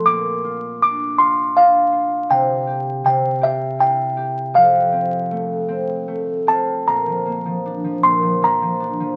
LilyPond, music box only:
\new Staff \with { instrumentName = "Music box" } { \time 3/4 \key bes \lydian \tempo 4 = 79 d'''4 d'''8 c'''8 f''4 | g''4 g''8 e''8 g''4 | f''2 r8 a''8 | bes''4. c'''8 bes''4 | }